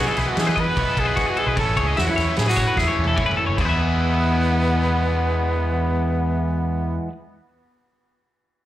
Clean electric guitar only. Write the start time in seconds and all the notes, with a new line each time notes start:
0.07 A4
0.18 B4
0.36 A4
0.47 B4
0.56 D#5
0.66 B4
0.77 C#5
0.86 A4
1.05 B4
1.16 F#4
1.26 G#4
1.37 A4
1.47 B4
1.56 C#5
1.77 C#5
1.87 D#5
1.97 E5
2.07 F#5
2.16 C#5
2.37 B4
2.48 G#4
2.56 C#5
2.67 B4
2.77 G#4
2.87 C#5
3.08 A4
3.16 C#5
3.26 B4
3.37 A4
3.47 C#5
3.57 E4
3.61 G#4 B4
3.69 E5